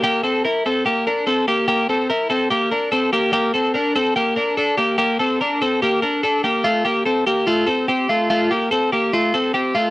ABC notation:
X:1
M:4/4
L:1/8
Q:1/4=145
K:Cmix
V:1 name="Clean electric guitar"
[B,G] [CA] [EB] [CA] [B,G] [DB] [CA] [B,G] | [B,G] [CA] [EB] [CA] [B,G] [DB] [CA] [B,G] | [B,G] [CA] [DB] [CA] [B,G] [DB] [DA] [B,G] | [B,G] [CA] [DB] [CA] [B,G] [DB] [DA] [B,G] |
[A,F] [B,G] [CA] [B,G] [A,F] [CA] [CG] [A,F] | [A,F] [B,G] [CA] [B,G] [A,F] [CA] [CG] [A,F] |]